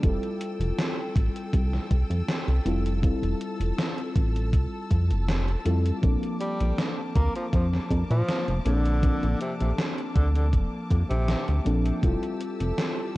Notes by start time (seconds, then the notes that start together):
0.01 F1 G3 C4 E4 F4 A4 G5 E6, kick, closed hi-hat
0.23 closed hi-hat
0.41 closed hi-hat
0.60 F1, closed hi-hat
0.79 snare, closed hi-hat
1.16 A1, kick, closed hi-hat
1.36 closed hi-hat
1.53 C2, kick, closed hi-hat
1.73 snare
1.91 C2, kick, closed hi-hat
2.10 F2, closed hi-hat
2.29 snare, closed hi-hat
2.48 C2, closed hi-hat
2.65 F1 G3 C4 E4 F4 A4, closed hi-hat
2.86 closed hi-hat
3.02 G3 C4 E4 F4 A4 A5, kick, closed hi-hat
3.22 F1, closed hi-hat
3.41 closed hi-hat
3.60 F1, closed hi-hat
3.78 snare, closed hi-hat
3.98 closed hi-hat
4.16 A1, kick, closed hi-hat
4.36 closed hi-hat
4.53 C2, kick, closed hi-hat
4.91 F2, kick, closed hi-hat
5.10 F1, closed hi-hat
5.28 snare, closed hi-hat
5.48 closed hi-hat
5.65 F2 G3 C4 E4 F4 A4, closed hi-hat
5.86 closed hi-hat
6.01 A#1 F3 A#3 C4 D4 A4 D6, kick, closed hi-hat
6.23 closed hi-hat
6.40 G3, closed hi-hat
6.60 A#1, closed hi-hat
6.78 snare, closed hi-hat
7.15 D2 A#3, kick, closed hi-hat
7.36 F3, closed hi-hat
7.53 F2 F3, kick, closed hi-hat
7.73 snare
7.90 F2, kick, closed hi-hat
8.10 A#2 F3, closed hi-hat
8.28 snare, closed hi-hat
8.48 F1, closed hi-hat
8.65 A#1 D3 F3 A#3 C4 D4 A4, closed hi-hat
8.86 closed hi-hat
9.02 F3 A#3 C4 D4 A4, kick, closed hi-hat
9.23 A#1, closed hi-hat
9.41 C3, closed hi-hat
9.60 A#1 C3, closed hi-hat
9.78 snare, closed hi-hat
9.98 closed hi-hat
10.16 D2 D3, kick, closed hi-hat
10.35 D3, closed hi-hat
10.53 F1, kick, closed hi-hat
10.91 F2, kick, closed hi-hat
11.10 A#1 C3, closed hi-hat
11.28 snare, closed hi-hat
11.48 D2, closed hi-hat
11.65 A#1 F3 A#3 C4 D4 A4, closed hi-hat
11.86 closed hi-hat
12.02 F1 G3 C4 E4 F4 G4 A4 A5 E6, kick, closed hi-hat
12.23 closed hi-hat
12.41 closed hi-hat
12.60 F1, closed hi-hat
12.78 snare, closed hi-hat